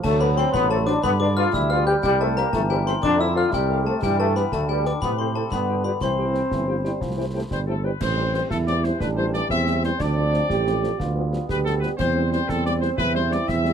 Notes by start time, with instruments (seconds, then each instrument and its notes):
0.03 tuba D2, euphonium F#3, trombone section A3, woodwind section A4, glockenspiel A5, concert bass drum, snare, crash
0.19 trombone section B3, french horn section F#4 A4 C5, woodwind section B4, trumpet section D5, glockenspiel B5
0.36 trombone section C4, french horn section F#4 A4 C5, woodwind section C5, trumpet section D5, glockenspiel C6, snare
0.53 tuba A1, trombone section B3, woodwind section B4, glockenspiel B5, concert bass drum, snare
0.69 trombone section A3, french horn section F#4 A4 C5, woodwind section A4, trumpet section D5, glockenspiel A5
0.85 trombone section D4, french horn section F#4 A4 C5, trumpet section D5, woodwind section D5, glockenspiel D6, snare
1.02 tuba G2, euphonium D3, trombone section B3, woodwind section B4, glockenspiel B5, concert bass drum, snare
1.19 trombone section D4, french horn section G4 B4, trumpet section D5, woodwind section D5, glockenspiel D6
1.36 trombone section F4, french horn section G4 B4, trumpet section D5, woodwind section F5, glockenspiel F6
1.53 tuba D2, euphonium G3, trombone section E4, woodwind section E5, glockenspiel E6, concert bass drum, snare
1.69 trombone section F4, french horn section G4 B4, trumpet section D5, woodwind section F5, glockenspiel F6
1.86 trombone section G4, french horn section G4 B4, trumpet section D5, woodwind section G5, glockenspiel G6
2.03 tuba C2, trombone section G3, woodwind section G4, glockenspiel G5, concert bass drum, snare
2.20 trombone section A3, french horn section G4 A#4 C5, woodwind section A4, trumpet section E5, glockenspiel A5
2.36 trombone section A#3, french horn section G4 A#4 C5, woodwind section A#4, trumpet section E5, glockenspiel A#5, snare
2.53 tuba G1, euphonium E3, trombone section A3, woodwind section A4, glockenspiel A5, concert bass drum, snare
2.69 trombone section G3, french horn section G4 A#4 C5, woodwind section G4, trumpet section E5, glockenspiel G5
2.86 trombone section C4, french horn section G4 A#4 C5, woodwind section C5, trumpet section E5, glockenspiel C6, snare
3.03 tuba F2, euphonium D3, trombone section D4, woodwind section D5, glockenspiel D6, concert bass drum, snare
3.19 trombone section E4, french horn section A4 C5, woodwind section E5, trumpet section F5, glockenspiel E6
3.35 trombone section F4, french horn section A4 C5, trumpet section F5, woodwind section F5, glockenspiel F6
3.52 tuba C2, euphonium C3, trombone section G3, woodwind section G4, glockenspiel G5, concert bass drum, snare
3.70 french horn section A4 C5, trumpet section F5
3.85 trombone section A3, woodwind section A4, french horn section A4 C5, trumpet section F5, glockenspiel A5
4.01 tuba G2, euphonium E3, trombone section G3, woodwind section G4, glockenspiel G5, concert bass drum, snare, crash
4.18 trombone section A3, french horn section G4 B4, woodwind section A4, trumpet section D5, glockenspiel A5
4.34 trombone section B3, french horn section G4 B4, woodwind section B4, trumpet section D5, glockenspiel B5, snare
4.51 tuba D2, euphonium D3, trombone section A3, woodwind section A4, glockenspiel A5, concert bass drum, snare
4.68 trombone section G3, woodwind section G4, french horn section G4 B4, trumpet section D5, glockenspiel G5
4.84 trombone section D4, french horn section G4 B4, trumpet section D5, woodwind section D5, glockenspiel D6, snare
5.01 tuba A2, euphonium C3, trombone section B3, woodwind section B4, glockenspiel B5, concert bass drum, snare
5.17 trombone section C4, french horn section E4 A4 C5, trumpet section C5, woodwind section C5, glockenspiel C6
5.34 trombone section A3, french horn section E4 A4 C5, woodwind section A4, trumpet section C5, glockenspiel A5
5.51 tuba G2, euphonium D3, trombone section B3, woodwind section B4, glockenspiel B5, concert bass drum, snare
5.68 french horn section F4 G4 D5, trumpet section G5
5.84 trombone section B3, french horn section F4 G4 D5, woodwind section B4, trumpet section G5, glockenspiel B5
6.01 tuba C2, euphonium E3, trombone section C4, woodwind section C5, glockenspiel C6, concert bass drum, snare
6.18 french horn section E4 G4 C5, trumpet section G5
6.34 french horn section E4 G4 C5, trumpet section G5, snare
6.51 tuba G1, euphonium E3, concert bass drum, snare
6.68 euphonium F3, french horn section E4 G4 C5, trumpet section G5
6.84 euphonium G3, french horn section E4 G4 C5, trumpet section G5, snare
7.01 tuba C2, euphonium F3, concert bass drum, snare
7.16 euphonium E3, french horn section E4 G4 C5, trumpet section G5
7.34 euphonium A3, french horn section E4 G4 C5, trumpet section G5
7.50 tuba G1, euphonium G3, woodwind section C5, trumpet section C5, concert bass drum, snare
7.67 euphonium A3, french horn section E4 G4 C5, woodwind section A4, trumpet section A4 G5
7.84 euphonium G3, french horn section E4 G4 C5, trumpet section B4 G5, woodwind section B4
8.00 tuba A1, trombone section E3 G3, euphonium C4, woodwind section C5, trumpet section C5, concert bass drum, snare, crash
8.18 french horn section E3 G3 C4
8.33 french horn section E3 G3 C4, trumpet section C5, woodwind section C5, snare
8.50 tuba E2, euphonium E4, trumpet section A4, woodwind section A4, concert bass drum, snare
8.67 french horn section E3 G3 C4, trumpet section D5, woodwind section D5, snare
8.83 french horn section E3 G3 C4, trumpet section C5, woodwind section C5, snare
9.00 tuba A1, euphonium D4, trumpet section B4, woodwind section B4, concert bass drum, snare
9.17 french horn section E3 G3 C4, trumpet section C5, woodwind section C5
9.34 french horn section E3 G3 C4, trumpet section D5, woodwind section D5, snare
9.50 tuba E2, euphonium C4, trumpet section E5, woodwind section E5, concert bass drum, snare
9.66 french horn section E3 G3 C4, snare
9.83 french horn section E3 G3 C4, woodwind section C5, trumpet section C5, snare
9.99 tuba D2, trombone section F3 C4, euphonium D4, woodwind section D5, trumpet section D5, concert bass drum, snare, crash
10.16 french horn section F3 A3 C4
10.34 french horn section F3 A3 C4, snare
10.49 tuba A1, euphonium G4, concert bass drum, snare
10.67 french horn section F3 A3 C4, snare
10.83 french horn section F3 A3 C4, snare
10.99 tuba D2, trombone section G3 B3, euphonium F4, concert bass drum, snare
11.16 french horn section F3 G3 B3
11.32 french horn section F3 G3 B3, snare
11.49 tuba D2, euphonium G4, trumpet section B4, woodwind section B4, concert bass drum, snare
11.65 french horn section F3 G3 B3, trumpet section A4, woodwind section A4, snare
11.80 french horn section F3 G3 B3, trumpet section B4, woodwind section B4, snare
11.97 tuba E2, trombone section G3 C4, euphonium C4, trumpet section C5, woodwind section C5, concert bass drum, snare, crash
12.15 french horn section E3 G3 C4
12.31 french horn section E3 G3 C4, trumpet section C5, woodwind section C5, snare
12.48 tuba E2, trumpet section A4, woodwind section A4, concert bass drum, snare
12.65 french horn section E3 G3 C4, trumpet section D5, woodwind section D5, snare
12.80 french horn section E3 G3 C4, trumpet section C5, woodwind section C5, snare
12.97 tuba E2, euphonium E4, trumpet section B4, woodwind section B4, concert bass drum, snare
13.14 french horn section E3 G3 C4, trumpet section C5, woodwind section C5
13.31 french horn section E3 G3 C4, woodwind section D5, trumpet section D5, snare
13.48 tuba E2, trumpet section E5, woodwind section E5, concert bass drum, snare
13.65 french horn section E3 G3 C4, snare